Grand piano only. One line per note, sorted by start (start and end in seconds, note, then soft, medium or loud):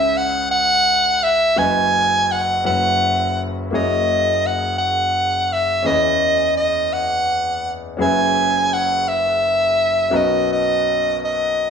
0.00 1.54 C#2 medium
0.00 1.54 C#3 medium
0.00 1.52 C#4 medium
0.00 1.53 E4 medium
0.00 1.54 G#4 medium
0.00 1.54 B4 medium
0.00 1.58 E5 medium
1.56 2.60 F#1 medium
1.56 2.60 F#2 medium
1.56 2.64 F#4 medium
1.56 2.64 B4 medium
1.56 2.65 D#5 medium
2.64 3.67 F#1 medium
2.64 3.67 F#2 medium
2.64 3.71 C#4 medium
2.64 3.69 E4 medium
2.64 3.71 F#4 medium
2.64 3.72 B4 medium
2.64 3.72 E5 medium
3.70 5.82 F#1 medium
3.70 5.82 F#2 medium
3.70 5.81 A#3 medium
3.70 5.81 E4 medium
3.70 5.82 F#4 medium
3.70 5.82 G#4 medium
3.70 5.83 C#5 medium
5.83 7.95 E2 medium
5.83 7.95 E3 medium
5.83 7.94 C#4 medium
5.83 7.95 E4 medium
5.83 7.95 G#4 medium
5.83 7.96 B4 medium
5.87 5.93 C#5 medium
5.94 8.00 D#5 medium
7.97 10.10 F#1 medium
7.97 10.09 F#2 medium
7.97 10.08 C#4 medium
7.97 10.09 F#4 medium
7.97 10.10 G#4 medium
7.97 10.10 B4 medium
8.02 10.11 E5 medium
10.10 11.70 B1 medium
10.10 11.70 B2 medium
10.10 11.70 C#4 medium
10.10 11.70 F#4 medium
10.10 11.70 A#4 medium
10.10 11.70 B4 medium
10.15 11.70 D#5 medium